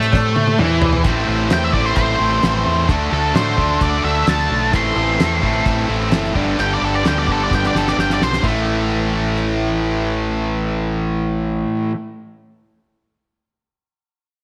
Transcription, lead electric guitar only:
1.53 1.63 G5 medium
1.64 1.73 E5 medium
1.73 1.85 D5 medium
1.86 1.96 C5 medium
1.97 2.86 C5 medium
3.13 3.35 A4 medium
3.36 3.80 C5 medium
3.82 4.04 D5 medium
4.05 4.27 E5 medium
4.29 4.73 A5 medium
4.76 5.64 C6 medium
6.60 6.70 G5 medium
6.74 6.83 D5 medium
6.85 6.94 A4 medium
6.95 7.05 D5 medium
7.08 7.17 G5 medium
7.19 7.29 D5 medium
7.32 7.41 A4 medium
7.44 7.53 D5 medium
7.55 7.64 G5 medium
7.67 7.76 D5 medium
7.78 7.87 A4 medium
7.89 7.98 D5 medium
8.00 8.10 G5 medium
8.14 8.22 D5 medium
8.23 8.44 C5 medium

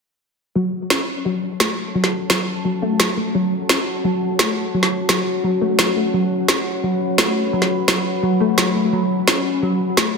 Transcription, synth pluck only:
0.55 0.64 F#3 loud
0.90 0.98 C#4 medium
1.25 1.33 F#3 loud
1.60 1.68 A3 medium
1.95 2.03 F#3 loud
2.30 2.42 F#3 medium
2.65 2.73 F#3 loud
2.82 2.94 A3 loud
3.00 3.08 F#3 loud
3.17 3.29 A3 medium
3.35 3.43 F#3 loud
3.69 3.78 C#4 medium
4.04 4.12 F#3 loud
4.39 4.47 A3 medium
4.74 4.82 F#3 loud
5.09 5.21 F#3 medium
5.44 5.52 F#3 loud
5.61 5.73 A3 loud
5.79 5.87 F#3 loud
5.96 6.08 A3 medium
6.14 6.22 F#3 loud
6.49 6.57 C#4 medium
6.83 6.92 F#3 loud
7.18 7.26 A3 medium
7.53 7.61 F#3 loud
7.88 8.00 F#3 medium
8.23 8.31 F#3 loud
8.40 8.53 A3 loud
8.58 8.66 F#3 loud
8.75 8.87 A3 medium
8.93 9.01 F#3 loud
9.27 9.36 C#4 medium
9.62 9.71 F#3 loud
9.97 10.05 A3 medium

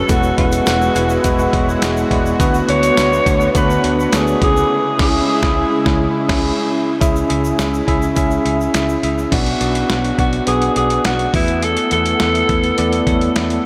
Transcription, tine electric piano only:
0.00 0.12 C#4 loud
0.00 0.09 F#4 medium
0.00 0.12 G#4 loud
0.00 0.11 A4 medium
0.00 0.09 B4 medium
0.08 0.30 G#3 loud
0.08 0.31 B3 medium
0.08 0.31 E4 medium
0.08 0.31 F#4 medium
0.08 0.31 B4 loud
0.37 0.59 G#3 medium
0.37 0.60 B3 medium
0.37 0.60 E4 medium
0.37 0.60 F#4 medium
0.37 0.60 B4 medium
0.66 0.88 G#3 medium
0.66 0.88 B3 medium
0.66 0.88 E4 medium
0.66 0.89 F#4 medium
0.66 0.89 B4 medium
0.95 1.17 G#3 medium
0.95 1.18 B3 medium
0.95 1.18 E4 medium
0.95 1.18 F#4 medium
0.95 1.18 B4 medium
1.24 1.46 G#3 loud
1.24 1.46 B3 loud
1.24 1.47 E4 loud
1.24 1.47 F#4 loud
1.24 1.47 B4 loud
1.53 1.75 G#3 medium
1.53 1.75 B3 medium
1.53 1.75 E4 medium
1.53 1.75 F#4 medium
1.53 1.76 C#5 loud
1.82 2.04 G#3 medium
1.82 2.04 B3 medium
1.82 2.04 E4 medium
1.82 2.04 F#4 medium
1.82 2.04 G#4 loud
2.10 2.32 G#3 medium
2.10 2.33 B3 medium
2.10 2.33 E4 medium
2.10 2.33 F#4 medium
2.10 2.33 D5 loud
2.39 2.61 A3 loud
2.39 2.61 B3 loud
2.39 2.62 D4 loud
2.39 2.62 F#4 loud
2.39 2.62 B4 loud
2.68 2.90 A3 medium
2.68 2.90 B3 medium
2.68 2.90 D4 medium
2.68 2.91 F#4 medium
2.68 2.91 C#5 medium
2.97 3.19 A3 medium
2.97 3.19 B3 medium
2.97 3.19 D4 medium
2.97 3.19 F#4 medium
2.97 3.19 B4 medium
3.25 3.48 A3 medium
3.25 3.48 B3 medium
3.25 3.48 D4 medium
3.25 3.48 F#4 medium
3.25 3.48 C#5 medium
3.54 3.77 A3 loud
3.54 3.77 B3 medium
3.54 3.77 D4 medium
3.54 3.77 F#4 medium
3.54 3.77 D5 loud
3.83 4.06 A3 medium
3.83 4.06 B3 medium
3.83 4.06 D4 medium
3.83 4.06 F#4 medium
3.83 4.06 B4 medium
4.12 4.34 A3 medium
4.12 4.34 B3 medium
4.12 4.35 D4 medium
4.12 4.35 F#4 medium
4.12 4.35 B4 medium
4.41 4.70 C#4 medium
4.41 4.71 E4 medium
4.41 4.71 G#4 medium
4.99 5.19 C#4 loud
4.99 5.19 E4 loud
4.99 5.19 G#4 loud
5.42 5.62 C#4 medium
5.42 5.62 E4 loud
5.85 6.05 C#4 loud
5.85 6.05 E4 loud
6.28 6.48 C#4 loud
6.28 6.49 E4 loud
6.28 6.49 G#4 loud
7.00 7.23 C#4 loud
7.00 7.23 E4 medium
7.00 7.23 G#4 loud
7.00 7.23 E5 loud
7.29 7.51 C#4 medium
7.29 7.52 E4 medium
7.29 7.52 G#4 medium
7.29 7.52 E5 loud
7.59 7.81 C#4 medium
7.59 7.81 E4 medium
7.59 7.81 G#4 medium
7.59 7.81 E5 medium
7.87 8.09 C#4 loud
7.87 8.09 E4 loud
7.87 8.10 G#4 loud
7.87 8.10 E5 loud
8.16 8.38 C#4 loud
8.16 8.38 E4 loud
8.16 8.39 G#4 loud
8.16 8.39 E5 loud
8.45 8.67 C#4 medium
8.45 8.67 E4 medium
8.45 8.67 G#4 medium
8.45 8.68 E5 medium
8.74 8.96 C#4 medium
8.74 8.96 E4 medium
8.74 8.96 G#4 medium
8.74 8.96 E5 medium
9.03 9.25 C#4 medium
9.03 9.25 E4 medium
9.03 9.25 G#4 medium
9.03 9.25 E5 medium
9.31 9.53 B3 medium
9.31 9.54 D4 medium
9.31 9.54 F#4 medium
9.31 9.54 D5 medium
9.60 9.82 B3 medium
9.60 9.83 D4 medium
9.60 9.83 F#4 medium
9.60 9.83 D5 medium
9.89 10.11 B3 medium
9.89 10.11 D4 medium
9.89 10.12 F#4 medium
9.89 10.12 C#5 medium
10.18 10.40 B3 medium
10.18 10.40 D4 medium
10.18 10.40 F#4 medium
10.18 10.41 D5 medium
10.46 10.69 B3 medium
10.46 10.69 D4 medium
10.46 10.69 F#4 medium
10.46 10.69 B4 loud
10.75 10.98 B3 medium
10.75 10.98 D4 medium
10.75 10.98 F#4 medium
10.75 10.98 D5 medium
11.05 11.27 B3 medium
11.05 11.27 D4 medium
11.05 11.27 F#4 medium
11.05 11.27 D5 medium
11.33 11.80 A3 medium
11.33 11.80 B3 medium
11.33 11.80 E4 medium
11.33 11.80 B4 medium
11.91 12.13 A3 medium
11.91 12.13 B3 medium
11.91 12.13 E4 medium
11.91 12.14 B4 medium
12.20 12.42 A3 medium
12.20 12.42 B3 medium
12.20 12.42 E4 medium
12.20 12.43 B4 medium
12.49 12.71 A3 medium
12.49 12.71 B3 medium
12.49 12.71 E4 medium
12.49 12.72 B4 medium
12.78 13.00 A3 loud
12.78 13.00 B3 loud
12.78 13.00 E4 loud
12.78 13.00 D5 loud
13.07 13.29 A3 medium
13.07 13.29 B3 medium
13.07 13.29 E4 medium
13.07 13.29 C#5 medium
13.35 13.58 A3 medium
13.35 13.58 B3 medium
13.35 13.58 E4 medium
13.35 13.58 A4 medium

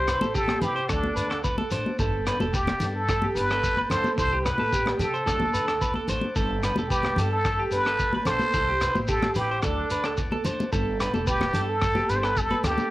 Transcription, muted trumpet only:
0.00 0.32 C5 loud
0.36 0.66 A4 medium
0.64 0.91 G4 medium
0.91 1.42 D4 medium
2.53 2.92 G4 medium
2.95 3.37 A4 medium
3.35 3.91 B4 loud
3.90 4.17 C5 loud
4.18 4.45 C5 loud
4.44 4.99 B4 medium
5.00 6.05 A4 medium
6.89 7.28 G4 medium
7.31 7.69 A4 medium
7.72 8.23 B4 loud
8.26 9.10 C5 loud
9.09 9.36 A4 loud
9.37 9.66 G4 medium
9.64 10.19 D4 medium
11.28 11.71 G4 medium
11.69 12.11 A4 loud
12.10 12.17 B4 loud
12.16 12.26 C5 medium
12.24 12.39 B4 loud
12.38 12.64 A4 medium
12.66 12.90 G4 medium

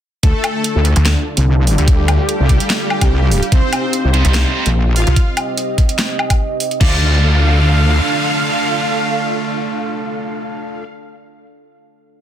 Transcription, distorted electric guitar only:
4.14 4.53 G3 medium
4.14 4.53 D#4 medium
4.14 4.53 C5 medium
4.55 4.69 G3 medium
4.55 4.68 D#4 medium
4.55 4.69 C5 loud
6.81 10.83 A3 medium
6.81 10.83 F4 medium
6.81 10.83 D5 medium

